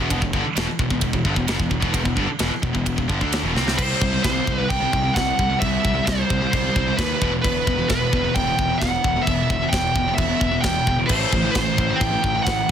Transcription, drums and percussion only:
0.10 kick, ride bell
0.22 kick
0.33 kick
0.57 snare, ride bell
0.79 kick
0.90 kick
1.01 kick, ride bell
1.13 kick
1.25 kick
1.36 kick
1.48 snare, ride bell
1.60 kick
1.71 kick
1.82 kick
1.94 kick, ride bell
2.05 kick
2.17 kick
2.39 snare, ride bell
2.63 kick
2.75 kick
2.86 kick, ride bell
2.98 kick
3.10 kick
3.21 kick
3.33 snare, ride bell
3.56 snare
3.68 snare
3.79 kick, crash, china
4.02 kick
4.24 kick, snare, china
4.47 kick
4.70 kick, china
4.93 kick
5.16 kick, snare, china
5.39 kick
5.62 kick, china
5.85 kick
6.07 kick, snare, china
6.30 kick
6.53 kick, china
6.76 kick
6.99 kick, snare, china
7.22 kick
7.44 kick, china
7.67 kick
7.89 kick, snare, china
8.13 kick
8.35 kick, china
8.59 kick
8.81 kick, snare, china
9.04 kick
9.27 kick, china
9.50 kick
9.73 kick, snare, china
9.96 kick
10.18 kick, china
10.41 kick
10.63 kick, snare, china
10.87 kick
11.09 kick, crash, china
11.33 kick
11.55 kick, snare, china
11.78 kick
12.01 kick, china
12.24 kick
12.47 kick, snare, china

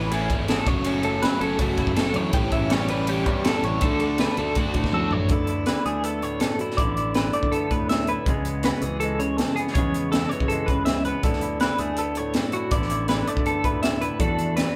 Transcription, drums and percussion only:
0.12 ride
0.30 kick, ride
0.48 snare, ride
0.67 kick, ride
0.84 ride
1.03 ride
1.23 snare, ride
1.41 ride
1.59 kick, ride
1.78 kick, ride
1.87 kick
1.96 snare, ride
2.14 ride
2.33 kick, ride
2.52 kick, ride
2.70 snare, ride
2.88 ride
3.07 ride
3.26 kick, ride
3.45 snare, ride
3.64 ride
3.81 kick, ride
4.00 ride
4.18 snare, ride
4.37 ride
4.55 kick, ride
4.74 kick, ride
4.84 kick, snare
4.92 high tom
5.11 floor tom
5.29 kick, closed hi-hat
5.47 closed hi-hat
5.66 snare, closed hi-hat
5.86 closed hi-hat
6.04 closed hi-hat
6.22 closed hi-hat
6.40 snare, closed hi-hat
6.59 closed hi-hat
6.71 snare
6.78 kick, closed hi-hat
6.97 closed hi-hat
7.14 snare, closed hi-hat
7.33 closed hi-hat
7.43 kick
7.52 closed hi-hat
7.71 kick, closed hi-hat
7.89 snare, closed hi-hat
8.07 closed hi-hat
8.26 kick, closed hi-hat
8.45 closed hi-hat
8.63 snare, closed hi-hat
8.82 closed hi-hat
9.01 closed hi-hat
9.20 closed hi-hat
9.38 snare, closed hi-hat
9.57 closed hi-hat
9.67 snare
9.75 kick, closed hi-hat
9.94 closed hi-hat
10.12 snare, closed hi-hat
10.31 closed hi-hat
10.40 kick
10.50 closed hi-hat
10.68 kick, closed hi-hat
10.86 snare, closed hi-hat
11.05 closed hi-hat
11.23 kick, closed hi-hat
11.33 snare
11.41 closed hi-hat
11.60 snare, closed hi-hat
11.78 closed hi-hat
11.97 closed hi-hat
12.15 closed hi-hat
12.34 snare, closed hi-hat
12.52 closed hi-hat
12.71 kick, closed hi-hat
12.82 snare
12.90 closed hi-hat
13.08 snare, closed hi-hat
13.27 closed hi-hat
13.37 kick
13.46 closed hi-hat
13.64 kick, closed hi-hat
13.83 snare, closed hi-hat
14.02 closed hi-hat
14.20 kick, closed hi-hat
14.39 closed hi-hat
14.57 snare, closed hi-hat

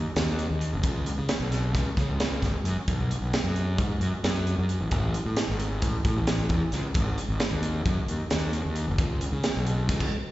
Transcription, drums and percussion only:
0.16 snare, closed hi-hat
0.39 closed hi-hat
0.61 closed hi-hat
0.83 kick, closed hi-hat
1.06 closed hi-hat
1.29 snare, closed hi-hat
1.52 snare, closed hi-hat
1.75 kick, snare, closed hi-hat
1.97 kick, snare, closed hi-hat
2.20 snare, closed hi-hat
2.42 kick, snare, closed hi-hat
2.65 closed hi-hat
2.88 kick, closed hi-hat
3.11 closed hi-hat
3.33 snare, closed hi-hat
3.56 closed hi-hat
3.78 kick, closed hi-hat
4.01 closed hi-hat
4.24 snare, closed hi-hat
4.47 closed hi-hat
4.69 closed hi-hat
4.91 kick, closed hi-hat
5.14 closed hi-hat
5.37 snare, closed hi-hat
5.60 closed hi-hat
5.82 kick, closed hi-hat
6.05 kick, closed hi-hat
6.27 snare, closed hi-hat
6.49 kick, closed hi-hat
6.72 snare, closed hi-hat
6.94 kick, closed hi-hat
7.18 closed hi-hat
7.40 snare, closed hi-hat
7.63 closed hi-hat
7.86 kick, closed hi-hat
8.08 closed hi-hat
8.31 snare, closed hi-hat
8.53 closed hi-hat
8.76 closed hi-hat
8.98 kick, closed hi-hat
9.21 closed hi-hat
9.44 snare, closed hi-hat
9.66 closed hi-hat
9.89 kick, snare, closed hi-hat
10.00 kick, crash

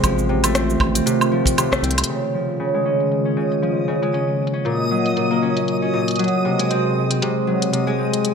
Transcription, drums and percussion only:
0.04 kick, closed hi-hat, cabasa, low woodblock
0.19 cabasa
0.44 closed hi-hat, cabasa, low woodblock
0.55 cross-stick, closed hi-hat, cabasa
0.70 cabasa
0.80 kick, low woodblock
0.95 closed hi-hat, cabasa
1.07 closed hi-hat, cabasa
1.21 cabasa, low woodblock
1.46 kick, closed hi-hat, cabasa
1.58 closed hi-hat, cabasa, low woodblock
1.72 kick, cross-stick, cabasa
1.84 closed hi-hat
1.91 closed hi-hat
1.98 closed hi-hat, low woodblock
2.04 closed hi-hat
2.49 closed hi-hat
2.52 closed hi-hat
2.57 closed hi-hat
2.60 closed hi-hat
2.65 closed hi-hat
2.69 closed hi-hat
3.00 closed hi-hat
3.12 closed hi-hat
3.52 closed hi-hat
3.63 closed hi-hat
4.03 closed hi-hat
4.14 closed hi-hat
4.47 closed hi-hat
4.66 closed hi-hat
5.06 closed hi-hat
5.17 closed hi-hat
5.57 closed hi-hat
5.68 closed hi-hat
6.08 closed hi-hat
6.11 closed hi-hat
6.16 closed hi-hat
6.19 closed hi-hat
6.24 closed hi-hat
6.28 closed hi-hat
6.59 closed hi-hat
6.71 closed hi-hat
7.11 closed hi-hat
7.22 closed hi-hat
7.62 closed hi-hat
7.73 closed hi-hat
8.14 closed hi-hat
8.25 closed hi-hat

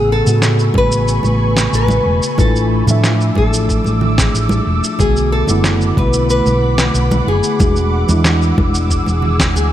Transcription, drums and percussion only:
0.27 high conga, cabasa
0.42 snare, cabasa
0.59 cabasa
0.74 kick, high conga
0.92 cabasa
1.08 cabasa
1.23 high conga, cabasa
1.57 snare, cabasa
1.74 cabasa
1.88 high conga, low conga, cabasa
2.23 cabasa
2.38 kick, high conga, cabasa
2.56 cabasa
2.87 high conga, low conga, cabasa
3.04 snare, cabasa
3.21 cabasa
3.35 kick, high conga
3.53 cabasa
3.69 kick, cabasa
3.84 high conga, cabasa
4.01 low conga
4.18 kick, snare, cabasa
4.35 cabasa
4.49 high conga, cabasa
4.84 cabasa
4.99 kick, high conga, cabasa
5.17 cabasa
5.47 high conga, cabasa
5.64 snare, cabasa
5.81 cabasa
5.97 kick, high conga
6.13 cabasa
6.30 cabasa
6.46 high conga, cabasa
6.78 snare, cabasa
6.95 cabasa
7.11 high conga, low conga, cabasa
7.44 cabasa
7.60 kick, high conga, cabasa
7.76 cabasa
8.09 high conga, low conga, cabasa
8.24 snare, cabasa
8.42 cabasa
8.58 kick, high conga
8.75 cabasa
8.90 kick, cabasa
9.06 high conga, cabasa
9.22 low conga
9.39 kick, snare, cabasa
9.57 cabasa

